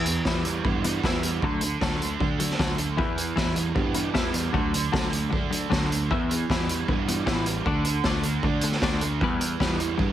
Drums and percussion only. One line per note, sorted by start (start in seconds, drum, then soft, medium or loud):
0.06 closed hi-hat medium
0.25 kick medium
0.25 snare medium
0.45 closed hi-hat medium
0.65 kick loud
0.84 closed hi-hat medium
1.04 kick medium
1.04 snare medium
1.23 closed hi-hat medium
1.42 kick medium
1.61 closed hi-hat medium
1.81 kick medium
1.81 snare medium
2.02 closed hi-hat medium
2.20 kick medium
2.40 closed hi-hat medium
2.50 snare soft
2.59 kick medium
2.59 snare medium
2.78 closed hi-hat medium
2.98 kick medium
3.18 closed hi-hat medium
3.37 kick loud
3.37 snare medium
3.56 closed hi-hat medium
3.76 kick loud
3.94 closed hi-hat medium
4.15 kick loud
4.15 snare medium
4.34 closed hi-hat medium
4.54 kick medium
4.74 closed hi-hat medium
4.94 kick medium
4.94 snare medium
5.13 closed hi-hat medium
5.33 kick loud
5.52 closed hi-hat medium
5.72 kick medium
5.72 snare medium
5.92 closed hi-hat medium
6.11 kick medium
6.31 closed hi-hat medium
6.50 kick medium
6.50 snare medium
6.69 closed hi-hat medium
6.88 kick loud
7.08 closed hi-hat medium
7.27 kick medium
7.27 snare medium
7.46 closed hi-hat medium
7.66 kick medium
7.85 closed hi-hat medium
8.04 kick loud
8.04 snare loud
8.23 closed hi-hat medium
8.43 kick loud
8.61 closed hi-hat medium
8.72 snare soft
8.82 kick medium
8.82 snare loud
9.01 closed hi-hat medium
9.21 kick medium
9.41 closed hi-hat medium
9.60 kick loud
9.60 snare loud
9.80 closed hi-hat medium
9.99 kick loud